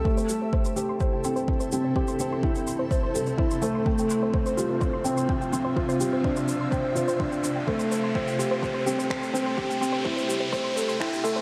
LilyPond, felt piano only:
\new Staff \with { instrumentName = "Felt piano" } { \time 4/4 \key c \major \tempo 4 = 126 a8 r8 c''8 g'8 c''8 c'8 r8 c'8 | g'8 c'8 e'8 r8 c''8 a'8 e'8 a8 | a8 r8 c''8 f'8 c''8 c'8 r8 c'8 | f'8 c'8 d'8 r8 c''8 f'8 d'8 d'8 |
a8 r8 c''8 g'8 c''8 c'8 r8 c'8 | g'8 c'8 e'8 r8 c''8 a'8 e'8 a8 | }